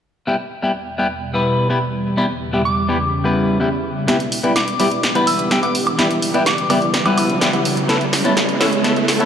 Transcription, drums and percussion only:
4.08 snare soft
4.08 closed hi-hat medium
4.20 closed hi-hat soft
4.32 open hi-hat medium
4.44 closed hi-hat soft
4.56 snare soft
4.56 closed hi-hat medium
4.68 closed hi-hat soft
4.80 open hi-hat medium
4.92 closed hi-hat soft
5.03 snare soft
5.03 closed hi-hat medium
5.15 closed hi-hat soft
5.27 open hi-hat loud
5.39 closed hi-hat soft
5.51 snare medium
5.51 closed hi-hat medium
5.63 closed hi-hat soft
5.75 open hi-hat medium
5.87 closed hi-hat soft
5.87 high woodblock medium
5.99 snare medium
5.99 closed hi-hat medium
6.11 closed hi-hat soft
6.22 open hi-hat loud
6.34 closed hi-hat soft
6.46 snare medium
6.46 closed hi-hat medium
6.58 closed hi-hat soft
6.70 open hi-hat medium
6.70 high woodblock medium
6.82 closed hi-hat soft
6.94 snare medium
6.94 closed hi-hat medium
7.06 closed hi-hat soft
7.06 high woodblock medium
7.18 open hi-hat loud
7.18 high woodblock medium
7.30 closed hi-hat soft
7.41 snare medium
7.41 closed hi-hat medium
7.53 closed hi-hat soft
7.65 open hi-hat loud
7.77 closed hi-hat soft
7.89 snare medium
7.89 closed hi-hat medium
8.01 closed hi-hat soft
8.13 snare medium
8.13 open hi-hat loud
8.25 closed hi-hat soft
8.37 snare medium
8.37 closed hi-hat medium
8.49 closed hi-hat soft
8.61 snare medium
8.61 open hi-hat medium
8.73 closed hi-hat soft
8.84 snare medium
8.84 closed hi-hat medium
8.96 closed hi-hat soft
9.08 snare medium
9.08 open hi-hat loud
9.20 closed hi-hat soft

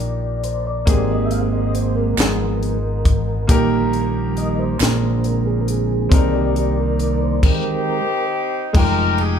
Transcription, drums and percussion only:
0.00 closed hi-hat soft
0.44 closed hi-hat medium
0.87 kick loud
0.87 closed hi-hat medium
1.31 closed hi-hat soft
1.75 closed hi-hat soft
2.18 snare medium
2.18 clap loud
2.18 closed hi-hat medium
2.63 closed hi-hat soft
3.05 kick medium
3.05 closed hi-hat medium
3.49 kick loud
3.49 closed hi-hat loud
3.93 closed hi-hat soft
4.37 closed hi-hat soft
4.80 snare medium
4.80 clap loud
4.80 closed hi-hat medium
5.24 closed hi-hat soft
5.68 closed hi-hat medium
6.12 kick loud
6.12 closed hi-hat loud
6.56 closed hi-hat soft
6.99 closed hi-hat soft
7.43 kick medium
7.43 crash medium
8.75 kick loud
8.75 crash medium
9.18 ride soft

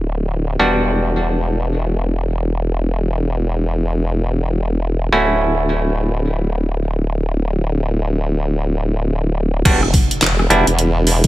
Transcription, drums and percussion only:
9.65 kick loud
9.65 closed hi-hat medium
9.65 crash loud
9.83 cross-stick medium
9.94 kick loud
9.94 open hi-hat medium
10.11 closed hi-hat medium
10.22 clap loud
10.22 closed hi-hat medium
10.39 cross-stick medium
10.50 closed hi-hat medium
10.67 closed hi-hat medium
10.79 closed hi-hat medium
11.07 open hi-hat medium
11.24 kick loud
11.24 closed hi-hat medium

